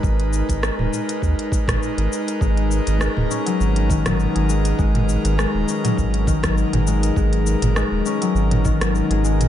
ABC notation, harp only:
X:1
M:4/4
L:1/16
Q:"Swing 16ths" 1/4=101
K:G#m
V:1 name="Harp" clef=bass
z16 | G, z3 G, z C F,3 D, F, z G G, z | G, z3 G, z C F,3 D, F, z G G, z | G, z3 G, z C F,3 D, F, z G G, z |]